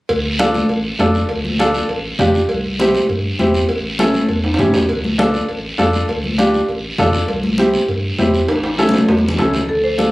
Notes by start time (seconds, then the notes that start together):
0.09 D2, cowbell, high conga, long guiro
0.39 D4 F4 A4, high conga, short guiro
0.54 high conga, short guiro
0.69 A1, cowbell, high conga, long guiro
0.99 F2 D4 F4 A4, high conga, low timbale, short guiro
1.14 short guiro
1.29 D2, cowbell, high conga, long guiro
1.45 high conga
1.59 D4 F4 A4, high conga, short guiro
1.74 short guiro
1.89 A1, cowbell, high conga, long guiro
2.19 F2 D4 F4 G4, high conga, low conga, low timbale, short guiro
2.34 short guiro
2.49 C2, cowbell, high conga, long guiro
2.79 C4 E4 G4, high conga, short guiro
2.94 high conga, short guiro
3.09 G2, cowbell, high conga, long guiro
3.39 E2 C4 E4 G4, high conga, short guiro
3.54 short guiro
3.69 A1, cowbell, high conga, long guiro
3.99 C#4 E4 A4, high conga, short guiro
4.14 high conga, short guiro
4.29 E2, cowbell, high conga, long guiro
4.44 high timbale
4.54 high timbale
4.59 G2 C#4 E4 G4, high conga, low conga, short guiro
4.74 E2, low timbale, short guiro
4.89 D2, cowbell, high conga, long guiro
5.04 high conga
5.18 D4 F4 A4, high conga, short guiro
5.34 short guiro
5.48 A1, cowbell, high conga, long guiro
5.78 F2 D4 F4 A4, high conga, low timbale, short guiro
5.93 short guiro
6.08 D2, cowbell, high conga, long guiro
6.24 high conga
6.38 D4 F4 G4, high conga, short guiro
6.54 short guiro
6.68 A1, cowbell, high conga, long guiro
6.98 F2 D4 F4 A4, high conga, low conga, low timbale, short guiro
7.13 short guiro
7.28 C2, cowbell, high conga, long guiro
7.43 high conga
7.58 C4 E4 G4, high conga, short guiro
7.74 short guiro
7.88 G2, cowbell, high conga, long guiro
8.18 E2 C4 E4 G4, high conga, low timbale, short guiro
8.34 short guiro
8.48 A1, cowbell, high conga, high timbale, long guiro
8.63 high timbale
8.78 C#4 E4 A4, high conga, high timbale, short guiro
8.89 high conga
8.93 low timbale, short guiro
8.98 high conga
9.08 E2, cowbell, high conga, low timbale, long guiro
9.18 high conga
9.28 low conga
9.38 C#2 C#4 E4 A4, low conga, low timbale, short guiro
9.53 low timbale, short guiro
9.59 low conga
9.69 D2 A4, high conga, long guiro
9.84 C5
9.98 D4 F4 A4, high conga, short guiro